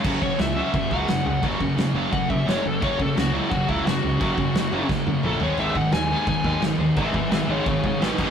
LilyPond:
<<
  \new Staff \with { instrumentName = "Lead electric guitar" } { \time 4/4 \key fis \major \tempo 4 = 174 r8 cis''8 e''8 e''4 fis''4 fis''8 | r2 fis''8 e''8 cis''8 a'8 | cis''8 a'8 fis'8 e'8 fis'8 e'8 fis'4~ | fis'2 r4 a'8 cis''8 |
e''8 fis''8 gis''4 gis''4 r4 | <b' e''>8 <b' e''>8 <b' e''>8 <gis' cis''>8 <gis' cis''>8 <gis' cis''>8 <fis' b'>8 <fis' b'>8 | }
  \new Staff \with { instrumentName = "Distorted electric guitar" } { \time 4/4 \key fis \major <fis ais cis' fis'>1 | <fis ais cis' fis'>1 | <fis ais cis' fis'>1 | <fis ais cis' fis'>2.~ <fis ais cis' fis'>8 <gis b dis' gis'>8~ |
<gis b dis' gis'>2.~ <gis b dis' gis'>8 <gis b dis' gis'>8~ | <gis b dis' gis'>2.~ <gis b dis' gis'>8 <fis ais dis' ais'>8 | }
  \new Staff \with { instrumentName = "Distorted electric guitar" } { \clef bass \time 4/4 \key fis \major <fis, cis fis>8 <fis, cis>8 <fis, cis>8 <fis, cis fis>8 <fis, cis>8 <fis, cis fis>8 <fis, cis>8 <fis, cis>8 | <fis, cis fis>8 <fis, cis>8 <fis, cis>8 <fis, cis fis>8 <fis, cis>8 <fis, cis>8 <fis, cis fis>8 <fis, cis>8 | <fis, cis fis>8 <fis, cis>8 <fis, cis>8 <fis, cis fis>8 <fis, cis>8 <fis, cis fis>8 <fis, cis>8 <fis, cis>8 | <fis, cis fis>8 <fis, cis>8 <fis, cis>8 <fis, cis fis>8 <fis, cis>8 <fis, cis>8 <fis, cis fis>8 <gis, dis gis>8 |
<gis, dis gis>8 <gis, dis>8 <gis, dis>8 <gis, dis gis>8 <gis, dis>8 <gis, dis gis>8 <gis, dis>8 <gis, dis>8 | <gis, dis gis>8 <gis, dis>8 <gis, dis>8 <gis, dis gis>8 <gis, dis>8 <gis, dis>8 <gis, dis gis>8 <dis ais dis'>8 | }
  \new Staff \with { instrumentName = "Picked electric bass" } { \clef bass \time 4/4 \key fis \major fis,,8 fis,,8 cis,4 fis,,8 cis,8 fis,,8 cis,8 | fis,,8 fis,,8 fis,,8 fis,,8 fis,,8 fis,8 fis,,8 fis,,8 | fis,,8 fis,,8 cis,4 fis,,8 cis,8 fis,,8 cis,8 | fis,,8 fis,,8 fis,,8 fis,,8 fis,,8 fis,8 ais,,8 gis,,8 |
gis,,8 gis,,8 dis,4 gis,,8 dis,8 gis,,8 dis,8 | gis,,8 gis,,8 gis,,8 gis,,8 gis,,8 gis,8 gis,,8 fis,,8 | }
  \new DrumStaff \with { instrumentName = "Drums" } \drummode { \time 4/4 <cymc bd>8 bd8 <cymc sn>4 <cymc bd>8 bd8 <cymc sn>4 | <cymc bd>8 bd8 <cymc sn>4 <cymc bd>8 bd8 <cymc sn>4 | <cymc bd>8 bd8 <cymc sn>4 <cymc bd>8 bd8 <cymc sn>4 | <cymc bd>8 bd8 <cymc sn>4 <bd sn>8 tommh8 toml8 tomfh8 |
cymc8 bd8 <cymc sn>4 <cymc bd>8 bd8 <cymc sn>4 | <cymc bd>8 bd8 <cymc sn>4 <cymc bd>8 bd8 <cymc sn>8 <cymc bd>8 | }
>>